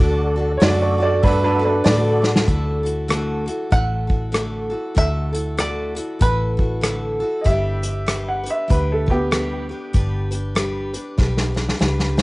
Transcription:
Already playing: five-string banjo D5
0.00 fingered electric bass D2, steel-string acoustic guitar D3 A3 D4 F#4 A4, tonewheel organ F#4 A4 D5, kick, open hi-hat
0.36 steel-string acoustic guitar D4 F#4 A4
0.57 fingered electric bass F#2, steel-string acoustic guitar D3 A3 D4, tonewheel organ F#4 A4, upright piano C#5
0.62 upright piano F#4 D5, steel-string acoustic guitar F#4 A4, tonewheel organ D5, snare, open hi-hat
0.81 upright piano F#4 D5
0.98 steel-string acoustic guitar D4 F#4 A4
1.02 upright piano F#4 D5
1.22 fingered electric bass G2, steel-string acoustic guitar A3 D4 F#4, upright piano D4 B4, tonewheel organ F#4 A4 E5, kick, open hi-hat
1.26 steel-string acoustic guitar A4
1.44 upright piano D4 B4
1.59 steel-string acoustic guitar D4 F#4 A4
1.64 upright piano D4 B4
1.84 fingered electric bass A2, steel-string acoustic guitar D3 A3 D4 F#4 A4, tonewheel organ F#4 A4 D5, upright piano D5, snare, open hi-hat
2.22 steel-string acoustic guitar D4 F#4 A4, snare
2.36 snare
2.47 fingered electric bass D2, steel-string acoustic guitar D3 A3 E4 F#4 A4, kick, closed hi-hat
2.83 steel-string acoustic guitar E4 F#4 A4, closed hi-hat
3.08 steel-string acoustic guitar D3 A3 E4 F#4 A4, cross-stick, closed hi-hat
3.46 steel-string acoustic guitar E4 F#4 A4, closed hi-hat
3.71 fingered electric bass A1, steel-string acoustic guitar A3 E4 F#4 A4, five-string banjo F#5, kick, closed hi-hat
4.07 steel-string acoustic guitar E4 F#4 A4, kick
4.32 steel-string acoustic guitar D3 A3 E4 F#4 A4, cross-stick, closed hi-hat
4.70 steel-string acoustic guitar E4 F#4 A4
4.95 fingered electric bass D2, steel-string acoustic guitar D3 A3 E4 F#4 A4, five-string banjo E5, kick, closed hi-hat
5.33 steel-string acoustic guitar E4 F#4 A4, closed hi-hat
5.57 steel-string acoustic guitar D3 A3 E4 F#4 A4, five-string banjo D5, cross-stick, closed hi-hat
5.95 steel-string acoustic guitar E4 F#4 A4, closed hi-hat
6.19 fingered electric bass A1, steel-string acoustic guitar A3 E4 F#4 A4, five-string banjo B4, kick, closed hi-hat
6.57 steel-string acoustic guitar E4 F#4 A4, kick
6.81 steel-string acoustic guitar D3 A3 E4 F#4 A4, cross-stick, closed hi-hat
7.20 steel-string acoustic guitar E4 F#4 A4
7.41 steel-string acoustic guitar G3 D4, upright piano D#5
7.46 fingered electric bass G1, steel-string acoustic guitar G4 B4, upright piano E5, kick, closed hi-hat
7.82 steel-string acoustic guitar D4 G4 B4, closed hi-hat
8.06 steel-string acoustic guitar G3 D4 G4 B4, cross-stick, closed hi-hat
8.29 upright piano F#5
8.44 steel-string acoustic guitar D4 G4 B4, closed hi-hat
8.50 upright piano E5
8.68 fingered electric bass D2, steel-string acoustic guitar G3 D4 G4 B4, upright piano B4, kick, closed hi-hat
8.92 upright piano A4
9.06 upright piano B3, steel-string acoustic guitar D4 G4 B4, kick
9.11 upright piano G4
9.31 steel-string acoustic guitar G3 D4 G4 B4, cross-stick, closed hi-hat
9.69 steel-string acoustic guitar D4 G4 B4
9.93 fingered electric bass G1, steel-string acoustic guitar G3 D4 G4 B4, kick, closed hi-hat
10.31 steel-string acoustic guitar D4 G4 B4, closed hi-hat
10.55 steel-string acoustic guitar G3 D4 G4 B4, cross-stick, closed hi-hat
10.93 steel-string acoustic guitar D4 G4 B4, closed hi-hat
11.18 fingered electric bass B1, steel-string acoustic guitar G3 D4 G4 B4, kick, snare
11.37 snare
11.54 steel-string acoustic guitar D4 G4 B4, snare
11.69 snare
11.79 fingered electric bass C#2, steel-string acoustic guitar G3 D4 G4 B4, snare
11.99 snare
12.17 steel-string acoustic guitar G4 B4, snare

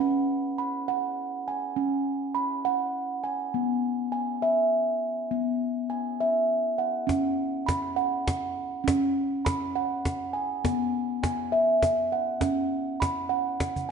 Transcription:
Already playing: steel tongue drum F#5
0.00 steel tongue drum C#4
0.58 steel tongue drum B5
0.88 steel tongue drum F#5
1.48 steel tongue drum G#5
1.76 steel tongue drum C#4
2.35 steel tongue drum B5
2.65 steel tongue drum F#5
3.24 steel tongue drum G#5
3.54 steel tongue drum B3
4.12 steel tongue drum G#5
4.42 steel tongue drum E5
5.31 steel tongue drum B3
5.90 steel tongue drum G#5
6.21 steel tongue drum E5
6.78 steel tongue drum F#5
7.07 steel tongue drum C#4, cajon bass, cajon slap
7.66 steel tongue drum B5, cajon bass, cajon slap
7.96 steel tongue drum F#5, cajon slap
8.28 cajon bass, cajon slap
8.84 steel tongue drum C#4, cajon bass, cajon slap
9.45 steel tongue drum B5, cajon bass, cajon slap
9.76 steel tongue drum F#5, cajon slap
10.05 cajon bass, cajon slap
10.33 steel tongue drum G#5
10.64 steel tongue drum B3, cajon bass, cajon slap
11.23 steel tongue drum G#5, cajon bass, cajon slap
11.52 steel tongue drum E5, cajon slap
11.83 cajon bass, cajon slap
12.12 steel tongue drum F#5
12.41 steel tongue drum C#4, cajon bass, cajon slap
12.56 cajon slap
13.00 steel tongue drum B5, cajon bass, cajon slap
13.29 steel tongue drum F#5
13.60 cajon bass, cajon slap
13.76 cajon bass

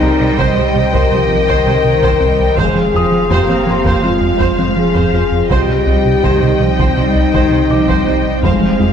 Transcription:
Already playing: sub bass C2, ambient pad D#3 C4 G4 C5, cello section G3, french horn section D#4, viola section C5, violin section D#5 G5, felt piano C6
0.01 analog synth bass C2, double bass section C2, synth arpeggio sound C4, viola section G4, felt piano A#4 A#5
0.21 analog synth bass C3
0.38 analog synth bass C2, double bass section C2, synth arpeggio sound C3, viola section C5, french horn section C5, taiko
0.57 double bass section C2, analog synth bass C3, synth arpeggio sound G3, viola section C5
0.75 double bass section C2, analog synth bass C3, synth arpeggio sound G3, viola section G4
0.93 analog synth bass C2, double bass section C2, synth arpeggio sound C3, french horn section A#4, viola section C5, taiko
1.12 double bass section C2, analog synth bass C3, cello section F3, synth arpeggio sound G3, viola section C5
1.30 analog synth bass C2
1.48 double bass section C2, analog synth bass C2, synth arpeggio sound C3, cello section D#3, viola section C5, taiko
1.66 double bass section C2, analog synth bass C3, synth arpeggio sound G3, viola section C5
1.84 analog synth bass C3, cello section D#3
2.02 analog synth bass C2, double bass section C2, synth arpeggio sound C3, viola section C5, taiko
2.20 analog synth bass C2, double bass section C2, cello section G3, synth arpeggio sound C4, viola section C5
2.39 analog synth bass C2
2.57 sub bass F1, analog synth bass F2, double bass section F2, ambient pad F3 F4, synth arpeggio sound F3, cello section G#3, french horn section G#4, viola section C5, violin section F5, taiko
2.76 analog synth bass F3
2.94 analog synth bass F2, double bass section F2, cello section F3, synth arpeggio sound F4, viola section G#4, felt piano D#6
3.12 analog synth bass F3
3.30 analog synth bass F2, double bass section F2, synth arpeggio sound F3, cello section A#3, french horn section G4, viola section C5, taiko
3.49 double bass section F2, analog synth bass F3, synth arpeggio sound C4, viola section C5
3.67 double bass section F2, analog synth bass F3, synth arpeggio sound C4, viola section G#4, felt piano C6
3.85 analog synth bass F2, double bass section F2, synth arpeggio sound F3, viola section C5, taiko
4.02 double bass section F2, analog synth bass F3, cello section G#3, synth arpeggio sound C4, french horn section F4, viola section C5
4.21 analog synth bass F2
4.39 analog synth bass F2, double bass section F2, synth arpeggio sound F3, viola section C5, taiko
4.58 double bass section F2, analog synth bass F3, synth arpeggio sound C4, viola section C5
4.77 analog synth bass F3, cello section F3, french horn section G#4
4.95 analog synth bass F2, double bass section F2, synth arpeggio sound F3, viola section C5, taiko
5.13 analog synth bass F2, double bass section F2, synth arpeggio sound F4, viola section C5
5.32 analog synth bass F2
5.50 analog synth bass C2, sub bass C2, double bass section C2, synth arpeggio sound C3, cello section G3, ambient pad G3 C4 D#4 C5, french horn section G4, viola section C5, violin section D#5 G5, taiko
5.69 analog synth bass C3
5.86 analog synth bass C2, double bass section C2, synth arpeggio sound C4, viola section G4
6.05 analog synth bass C3
6.23 analog synth bass C2, double bass section C2, synth arpeggio sound C3, cello section D#3, viola section C5, taiko
6.41 double bass section C2, analog synth bass C3, synth arpeggio sound G3, viola section C5
6.60 double bass section C2, analog synth bass C3, cello section F3, synth arpeggio sound G3, viola section G4
6.78 analog synth bass C2, double bass section C2, synth arpeggio sound C3, viola section C5, taiko
6.96 double bass section C2, analog synth bass C3, synth arpeggio sound G3, cello section G3, french horn section D#4, viola section C5
7.15 analog synth bass C2
7.33 analog synth bass C2, double bass section C2, synth arpeggio sound C3, cello section D#3, viola section C5, taiko
7.50 double bass section C2, analog synth bass C3, synth arpeggio sound G3, viola section C5
7.70 analog synth bass C3, cello section F3, felt piano D6
7.88 analog synth bass C2, double bass section C2, synth arpeggio sound C3, viola section C5, taiko
8.07 analog synth bass C2, double bass section C2, cello section G3, synth arpeggio sound C4, viola section C5
8.25 analog synth bass C2
8.43 sub bass F1, analog synth bass F2, double bass section F2, synth arpeggio sound F3, ambient pad F3 F4, french horn section G#3, cello section G#3, viola section C5, violin section F5, taiko
8.61 analog synth bass F3
8.80 analog synth bass F2, double bass section F2, synth arpeggio sound F4, viola section G#4

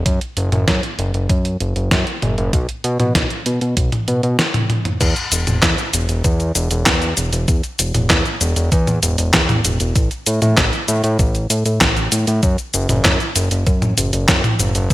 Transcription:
0.06 analog synth bass F#2, kick, closed hi-hat
0.21 closed hi-hat
0.37 analog synth bass F#1, closed hi-hat
0.52 analog synth bass F#1, closed hi-hat, mid tom
0.68 analog synth bass F#2, kick, snare, closed hi-hat
0.83 closed hi-hat
0.99 analog synth bass F#1, closed hi-hat
1.14 analog synth bass F#1, closed hi-hat
1.29 analog synth bass F#2, kick, closed hi-hat
1.45 closed hi-hat
1.60 analog synth bass F#1, closed hi-hat
1.76 analog synth bass F#1, closed hi-hat
1.91 analog synth bass F#2, kick, snare, closed hi-hat
2.07 closed hi-hat
2.22 analog synth bass F#1, closed hi-hat, mid tom
2.38 analog synth bass F#1, closed hi-hat
2.53 analog synth bass B1, kick, closed hi-hat
2.69 closed hi-hat
2.84 analog synth bass B2, closed hi-hat
3.00 analog synth bass B2, closed hi-hat, mid tom
3.15 analog synth bass B1, kick, snare, closed hi-hat
3.30 closed hi-hat
3.46 analog synth bass B2, closed hi-hat
3.61 analog synth bass B2, closed hi-hat
3.77 analog synth bass B1, kick, closed hi-hat
3.92 closed hi-hat, mid tom
4.08 analog synth bass B2, closed hi-hat
4.23 analog synth bass B2, closed hi-hat
4.39 snare, closed hi-hat
4.54 closed hi-hat, mid tom, high tom
4.70 closed hi-hat, mid tom
4.85 closed hi-hat, mid tom
5.01 analog synth bass E2, kick, closed hi-hat, crash, shaker
5.16 closed hi-hat, shaker
5.32 analog synth bass E1, closed hi-hat, shaker
5.47 analog synth bass E1, closed hi-hat, mid tom, shaker
5.63 analog synth bass E2, kick, snare, clap, closed hi-hat, shaker
5.78 closed hi-hat, shaker
5.93 analog synth bass E1, closed hi-hat, shaker
6.09 analog synth bass E1, closed hi-hat, shaker
6.24 analog synth bass E2, kick, closed hi-hat, shaker
6.40 closed hi-hat, shaker
6.55 analog synth bass E1, closed hi-hat, shaker
6.71 analog synth bass E1, closed hi-hat, shaker
6.86 analog synth bass E2, kick, snare, clap, closed hi-hat, shaker
7.02 closed hi-hat, shaker
7.17 analog synth bass E1, closed hi-hat, shaker
7.33 analog synth bass E1, closed hi-hat, shaker
7.48 analog synth bass E2, kick, closed hi-hat, shaker
7.63 closed hi-hat, shaker
7.79 analog synth bass E1, closed hi-hat, shaker
7.94 analog synth bass E1, closed hi-hat, mid tom, shaker
8.10 analog synth bass E2, kick, snare, clap, closed hi-hat, shaker
8.25 closed hi-hat, shaker
8.41 analog synth bass E1, closed hi-hat, shaker
8.56 analog synth bass E1, closed hi-hat, shaker
8.72 analog synth bass E2, kick, closed hi-hat, shaker
8.87 closed hi-hat, mid tom, shaker
9.03 analog synth bass E1, closed hi-hat, shaker
9.18 analog synth bass E1, closed hi-hat, shaker
9.34 analog synth bass E2, kick, snare, clap, closed hi-hat, shaker
9.49 closed hi-hat, mid tom, shaker
9.65 analog synth bass E1, closed hi-hat, shaker
9.80 analog synth bass E1, closed hi-hat, shaker
9.96 analog synth bass A1, kick, closed hi-hat, shaker
10.11 closed hi-hat, shaker
10.26 analog synth bass A2, closed hi-hat, shaker
10.42 analog synth bass A2, closed hi-hat, mid tom, shaker
10.57 analog synth bass A1, kick, snare, clap, closed hi-hat, shaker
10.73 closed hi-hat, shaker
10.88 analog synth bass A2, closed hi-hat, shaker
11.04 analog synth bass A2, closed hi-hat, shaker
11.19 analog synth bass A1, kick, closed hi-hat, shaker
11.35 closed hi-hat, shaker
11.50 analog synth bass A2, closed hi-hat, shaker
11.66 analog synth bass A2, closed hi-hat, shaker
11.81 analog synth bass A1, kick, snare, clap, closed hi-hat, shaker
11.97 closed hi-hat, shaker
12.12 analog synth bass A2, closed hi-hat, shaker
12.27 analog synth bass A2, closed hi-hat, shaker
12.43 analog synth bass F#2, kick, closed hi-hat, shaker
12.58 closed hi-hat, shaker
12.74 analog synth bass F#1, closed hi-hat, shaker
12.89 analog synth bass F#1, closed hi-hat, mid tom, shaker
13.05 analog synth bass F#2, kick, snare, clap, closed hi-hat, shaker
13.20 closed hi-hat, shaker
13.36 analog synth bass F#1, closed hi-hat, shaker
13.51 analog synth bass F#1, closed hi-hat, shaker
13.67 analog synth bass F#2, kick, closed hi-hat, shaker
13.82 closed hi-hat, mid tom, shaker
13.98 analog synth bass F#1, closed hi-hat, shaker
14.13 analog synth bass F#1, closed hi-hat, shaker
14.28 analog synth bass F#2, kick, snare, clap, closed hi-hat, shaker
14.44 closed hi-hat, mid tom, shaker
14.59 analog synth bass F#1, closed hi-hat, shaker
14.75 analog synth bass F#1, closed hi-hat, shaker
14.90 analog synth bass E2, kick, closed hi-hat, shaker

